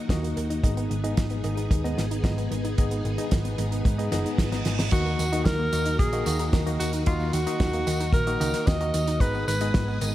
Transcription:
Already playing: A#3 D#4 F#4
0.09 D#2 D#3 A#3 D#4 F#4 D#5, kick, snare, closed hi-hat
0.23 A#3, closed hi-hat
0.37 D#2 D#3, closed hi-hat
0.50 D#4, closed hi-hat
0.63 G#1 G#2 D#3 B3 D#4 G#4 D#5, kick, closed hi-hat
0.77 B3, closed hi-hat
0.90 G#1 D#3, closed hi-hat
1.04 G#2 B3 D#4 G#4 D#5, closed hi-hat
1.17 G#1 D#3, kick, snare, closed hi-hat
1.30 B3, closed hi-hat
1.44 G#1 G#2 D#3 B3 D#4 G#4 D#5, closed hi-hat
1.57 D#4, closed hi-hat
1.71 D#2 D#3, kick, closed hi-hat
1.84 G#2 B3 D#4 G#4 D#5, closed hi-hat
1.97 G#1 D#3, snare, closed hi-hat
2.11 D#4, closed hi-hat
2.24 G#1 G#2 D#3 B3 D#4 G#4 D#5, kick, snare, closed hi-hat
2.38 B3, closed hi-hat
2.51 G#1 D#3, closed hi-hat
2.64 D#4, closed hi-hat
2.78 G#1 G#2 D#3 B3 D#4 G#4 D#5, kick, closed hi-hat
2.91 B3, closed hi-hat
3.05 G#1 D#3, closed hi-hat
3.18 G#2 B3 D#4 G#4 D#5, closed hi-hat
3.31 G#1 D#3, kick, snare, closed hi-hat
3.45 B3, closed hi-hat
3.58 G#1 G#2 D#3 B3 D#4 G#4 D#5, closed hi-hat
3.72 D#4, closed hi-hat
3.85 G#2 D#3, kick, closed hi-hat, reverse cymbal
3.99 G#2 B3 D#4 G#4 D#5, closed hi-hat
4.12 F#1 G#2 D#3 B3 D#4 G#4 D#5, snare, closed hi-hat
4.25 D#4, closed hi-hat
4.38 G#1 D#3, kick, snare, closed hi-hat
4.52 G#2 B3 D#4 G#4 D#5, snare, closed hi-hat
4.65 G#1 D#3, snare, closed hi-hat
4.79 D#4, snare, closed hi-hat
4.92 D#2 D#3 A#3 D#4 F#4 A#4 D#5, kick, closed hi-hat, crash, tambourine
5.06 A#3, tambourine
5.19 D#2 D#3, closed hi-hat, tambourine
5.32 D#3 A#3 D#4 F#4 D#5, closed hi-hat, tambourine
5.45 D#2 D#3 A#4, kick, snare, closed hi-hat, tambourine
5.59 A#3, tambourine
5.73 D#2 D#3 A#3 D#4 F#4 D#5, closed hi-hat, tambourine
5.86 D#4, closed hi-hat, tambourine
5.99 A#1 D#3 G#4, kick, closed hi-hat, tambourine
6.13 D#3 A#3 D#4 F#4 D#5, closed hi-hat, tambourine
6.26 D#2 D#3 A#3 D#4 F#4 D#5, closed hi-hat, tambourine
6.39 D#4, closed hi-hat, tambourine
6.53 D#2 D#3, kick, snare, closed hi-hat, tambourine
6.66 D#3 A#3 D#4 F#4 D#5, closed hi-hat, tambourine
6.80 D#2 D#3 F#4, closed hi-hat, tambourine
6.93 D#4, closed hi-hat, tambourine
7.06 D#2 D#3 A#3 D#4 F4 F#4 D#5, kick, closed hi-hat, tambourine
7.20 A#3, tambourine
7.33 D#2 D#3 F#4, closed hi-hat, tambourine
7.47 D#3 A#3 D#4 F#4 D#5, closed hi-hat, tambourine
7.60 D#2 D#3, kick, snare, closed hi-hat, tambourine
7.73 A#3, closed hi-hat, tambourine
7.87 D#2 D#3 A#3 D#4 F#4 D#5, closed hi-hat, tambourine
8.00 D#4, closed hi-hat, tambourine
8.13 A#1 D#3 A#4, kick, closed hi-hat, tambourine
8.27 D#3 A#3 D#4 F#4 D#5, closed hi-hat, tambourine
8.40 C#2 D#3 A#3 D#4 F#4 D#5, closed hi-hat, tambourine
8.53 D#4, snare, closed hi-hat, tambourine
8.67 D#2 D#3 D#5, kick, snare, closed hi-hat, tambourine
8.81 D#3 A#3 D#4 F#4 D#5, closed hi-hat, tambourine
8.94 D#2 D#3, closed hi-hat, tambourine
9.07 D#4, closed hi-hat, tambourine
9.20 G#1 G#2 D#3 G#3 B3 D#4 G#4 B4 D#5 D#6, kick, closed hi-hat, tambourine
9.34 B3, tambourine
9.48 G#1 D#3 B4, closed hi-hat, tambourine
9.61 G#2 B3 D#4 G#4 D#5, closed hi-hat, tambourine
9.74 G#1 D#3, kick, snare, closed hi-hat, tambourine
9.88 B3, tambourine
10.01 G#1 G#2 D#3 B3 D#4 G#4 D#5, closed hi-hat, tambourine

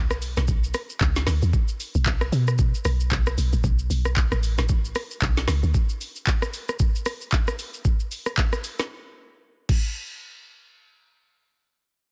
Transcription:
Already playing: C#2
0.11 B1, cross-stick, shaker
0.22 open hi-hat, shaker
0.37 B1, cross-stick, snare, shaker
0.48 kick, shaker
0.64 shaker
0.74 cross-stick, open hi-hat, shaker
0.90 shaker
1.00 C#2, kick, clap, shaker
1.16 snare, shaker
1.27 D2, cross-stick, snare, open hi-hat, shaker
1.42 E2, shaker
1.53 kick, shaker
1.68 shaker
1.80 open hi-hat, shaker
1.95 B1, shaker
2.06 kick, clap, shaker
2.21 cross-stick, shaker
2.32 B2, open hi-hat, shaker
2.48 cross-stick, shaker
2.58 kick, shaker
2.74 shaker
2.85 B1, cross-stick, open hi-hat, shaker
3.00 shaker
3.11 B1, kick, clap, shaker
3.26 cross-stick, shaker
3.38 B1, open hi-hat, shaker
3.53 A1, shaker
3.64 B1, kick, shaker
3.79 shaker
3.90 B1, open hi-hat, shaker
4.05 cross-stick, shaker
4.16 kick, clap, shaker
4.32 A1, cross-stick, shaker
4.43 open hi-hat, shaker
4.58 A1, cross-stick, snare, shaker
4.69 kick, shaker
4.85 shaker
4.95 cross-stick, open hi-hat, shaker
5.11 shaker
5.21 B1, kick, clap, shaker
5.37 snare, shaker
5.48 C#2, cross-stick, snare, open hi-hat, shaker
5.63 D2, shaker
5.74 kick, shaker
5.89 shaker
6.01 open hi-hat, shaker
6.16 shaker
6.27 kick, clap, shaker
6.42 cross-stick, shaker
6.54 open hi-hat, shaker
6.69 cross-stick, shaker
6.79 kick, shaker
6.95 shaker
7.06 cross-stick, open hi-hat, shaker
7.21 shaker
7.31 kick, clap, shaker
7.47 cross-stick, shaker
7.59 open hi-hat, shaker
7.74 shaker
7.85 kick, shaker
8.00 shaker
8.11 open hi-hat, shaker
8.26 cross-stick, shaker
8.37 kick, clap, shaker
8.53 cross-stick, shaker
8.64 open hi-hat, shaker
8.79 cross-stick, snare, shaker
9.69 kick, crash

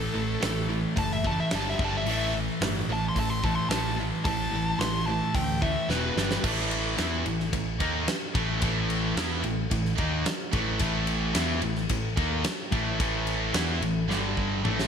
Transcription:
Already playing: A2 E3 A3 A4
0.14 A1 A2 E3
0.40 A1 A2 E3, snare, open hi-hat
0.68 A2 E3
0.96 F#1 A2 E3 A5, kick, open hi-hat
1.13 E5
1.24 A2 E3 A3 A5, kick
1.40 E5
1.51 G1 G2 D3 G3, snare, open hi-hat
1.56 A5
1.70 E5
1.79 G1 G2 D3 G3, kick
1.85 A5
1.97 E5
2.06 A1 A2 E3 A3, open hi-hat
2.11 E5
2.33 A2 E3
2.61 G1 A2 E3, snare, open hi-hat
2.88 A1 A2 E3
2.93 A5
3.09 C6
3.15 A1 A2 E3, kick, open hi-hat
3.19 A5
3.30 C6
3.43 A2 E3 A3 A5, kick
3.55 C6
3.69 A1 A2 E3 A5, snare, open hi-hat
3.73 A3
3.96 A2 E3
4.25 A1 A2 E3 A3 A5, kick, open hi-hat
4.51 A1 A2 E3
4.78 A1 A2 E3 C6, snare, open hi-hat
5.06 A2 E3 A5
5.35 D2 A2 E3 G5, kick, open hi-hat
5.61 A2 E3 A3 E5, kick
5.89 E1 E2 B2 E3 B4, snare
6.17 G1 G2 D3 G3, snare
6.31 snare
6.44 A1 A2 E3 A3, kick, crash
6.71 ride
6.98 E2 E3 B3 E4, snare, ride
7.24 A1 A2 E3, ride
7.40 snare
7.52 A1 A2 E3, kick, ride
7.80 D#2 D#3 A#3 D#4, kick, ride
8.08 snare, ride
8.34 A1 A2 E3 A3, kick, ride
8.62 A1 A2 E3 A3, kick, ride
8.90 ride
9.16 E2 E3 B3 E4, snare, ride
9.43 A1 A2 E3, ride
9.71 A1 A2 E3, kick, ride
9.85 snare
9.98 D#2 D#3 A#3 D#4, kick, ride
10.26 snare, ride
10.53 A1 A2 E3 A3, kick, ride
10.79 A1 A2 E3 A3, kick, ride
11.07 ride
11.35 E2 E3 B3 E4, snare, ride
11.62 A1 A2 E3, ride
11.76 snare
11.89 A1 A2 E3, kick, ride
12.17 D#2 D#3 A#3 D#4, kick, ride
12.44 snare, ride
12.71 A1 A2 E3 A3, kick, ride
13.00 A1 A2 E3 A3, kick, ride
13.27 ride
13.54 E2 E3 B3 E4, snare, ride
13.81 A1 A2 E3, ride
14.08 G1 G2 D3 G3, snare
14.37 kick
14.63 A1 A2 E3 A3, mid tom
14.79 snare

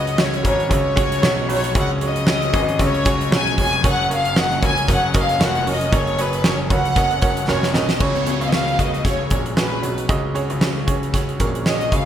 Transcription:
Already playing: C#2 C#3 F#3 G#3 C#4 F#4 G#4 B4 C#5 D#5
0.07 closed hi-hat
0.17 C#4 F#4 G#4 C#5, snare
0.22 C#5
0.34 closed hi-hat
0.43 G#1 C#4 F#4 G#4 C#5, kick, closed hi-hat
0.47 C#5
0.60 closed hi-hat
0.69 C#2 C#4 F#4 G#4 C#5, kick, closed hi-hat
0.74 C#5
0.96 C#4 F#4 G#4 C#5, kick, closed hi-hat
1.12 closed hi-hat
1.22 B1 C#4 F#4 G#4 C#5, snare
1.48 B1 C#4 F#4 G#4 C#5, open hi-hat
1.53 C#5
1.64 closed hi-hat
1.75 C#2 C#3 C#4 F#4 G#4 C#5, kick, closed hi-hat
1.80 F#5
2.01 C#4 F#4 G#4 C#5, closed hi-hat
2.06 D#5
2.16 closed hi-hat
2.27 C#4 F#4 G#4 C#5, snare
2.42 closed hi-hat
2.53 G#1 C#4 F#4 G#4 B4, kick, closed hi-hat
2.69 closed hi-hat
2.79 C#2 C#4 F#4 G#4 C#5, kick, snare, closed hi-hat
2.85 C#5
2.94 closed hi-hat
3.05 C#4 F#4 G#4 C#5, kick, closed hi-hat
3.21 closed hi-hat
3.31 B1 C#4 F#4 G#4 C#5, snare
3.36 G#5
3.47 closed hi-hat
3.58 F1 C#4 F#4 G#4 C#5 G#5, kick, open hi-hat
3.73 closed hi-hat
3.84 F#1 A#3 C#4 F#4 A#4 C#5, kick, closed hi-hat
3.88 F#5
4.10 C#4 F#4 A#4 C#5, closed hi-hat
4.14 F5
4.25 closed hi-hat
4.36 C#4 F#4 A#4 D#5 F#5, snare
4.51 closed hi-hat
4.62 C#2 C#4 F#4 A#4 C#5, kick, closed hi-hat
4.67 G#5
4.78 closed hi-hat
4.88 F#1 C#4 F#4 A#4 C#5, kick, snare, closed hi-hat
4.92 F#5
5.14 C#4 F#4 A#4 D#5, kick, closed hi-hat
5.20 F5
5.29 closed hi-hat
5.40 F1 C#4 F#4 A#4 C#5, snare
5.44 F#5
5.55 closed hi-hat
5.66 F1 C#4 F#4 A#4 C#5, open hi-hat
5.71 D#5
5.81 closed hi-hat
5.92 F#1 C#4 F#4 A#4 C#5, kick, closed hi-hat
5.96 C#5
6.07 closed hi-hat
6.18 C#4 F#4 A#4 B4 D#5, closed hi-hat
6.33 closed hi-hat
6.44 C#4 F#4 A#4 C#5, snare
6.48 C#5
6.70 C#2 C#4 F#4 A#4 C#5 F#5, kick, closed hi-hat
6.85 closed hi-hat
6.96 F#1 C#4 F#4 A#4 D#5, kick, snare, closed hi-hat
7.11 closed hi-hat
7.22 C#4 F#4 A#4 C#5, kick, closed hi-hat
7.37 closed hi-hat
7.48 F1 C#4 F#4 A#4 C#5, snare
7.63 snare
7.74 B1 C#4 F#4 A#4 C#5 D#5, snare
7.89 snare
8.00 C#2 C#3 C#4 F#4 G#4 C#5, kick, crash, downlifter
8.15 closed hi-hat
8.26 C#4 F#4 G#4 C#5, closed hi-hat
8.41 C#2 F5, closed hi-hat
8.48 D#5
8.52 C#4 F#4 G#4 C#5 F5, snare
8.68 closed hi-hat
8.79 C#4 F#4 G#4 B4 D#5, kick, closed hi-hat
8.94 closed hi-hat
9.04 C#4 F#4 G#4 C#5, kick, snare, closed hi-hat
9.30 A#1 C#4 F#4 G#4 C#5, kick, closed hi-hat
9.46 closed hi-hat
9.57 C#4 F#4 G#4 B4, snare
9.62 B4
9.83 B1 C#4 F#4 G#4 C#5, closed hi-hat
9.98 closed hi-hat
10.09 C#2 C#3 C#4 F#4 G#4 D#5, kick, closed hi-hat
10.34 C#4 F#4 G#4 C#5, closed hi-hat
10.50 C#2, closed hi-hat
10.61 C#4 F#4 G#4 C#5, snare
10.87 C#4 F#4 G#4 C#5, kick, closed hi-hat
11.03 closed hi-hat
11.13 C#4 F#4 G#4 C#5, kick, snare, closed hi-hat
11.29 closed hi-hat
11.40 A#1 C#4 F#4 G#4 A#4, kick, closed hi-hat
11.55 closed hi-hat
11.66 C#4 F#4 G#4 C#5 D#5, snare
11.81 closed hi-hat
11.92 C#2 C#4 F#4 G#4 C#5 F5, kick, closed hi-hat

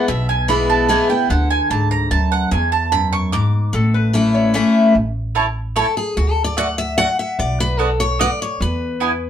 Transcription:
0.08 B1 B2 E5
0.29 G#5
0.48 E3 G#3 B3 E4 B5
0.70 A5
0.89 E3 G#3 B3 E4 G#5
1.09 B3 E4 G5
1.30 D2 D3 F#5
1.50 G#5
1.70 C#2 G#2 A5
1.91 A#5
2.11 D2 F#2 A5
2.32 F#5
2.51 E2 G#5
2.72 A5
2.92 F#2 B5
3.12 C#6
3.32 G#2 D6
3.73 A1 A2 A4
3.94 B4
4.13 E3 A3 C#4 E4
4.34 C#5
4.54 E3 A3 C#4 E4 E5
4.95 A1
5.35 A3 E4 C#5 A5
5.76 A3 E4 A4 C#5 A5
5.97 G#4
6.17 D2 F#4
6.31 A4
6.44 D5
6.57 A3 F#4 D5 F#5
6.78 E5
6.98 A3 F#4 D5 F#5
7.19 E5
7.39 B1 D5
7.60 B4
7.79 B3 F#4 A4 D5 F#5
8.00 C#5
8.19 B3 F#4 D5 F#5
8.42 C#5
8.61 E2 B4
9.00 B3 E4 B4 G#5

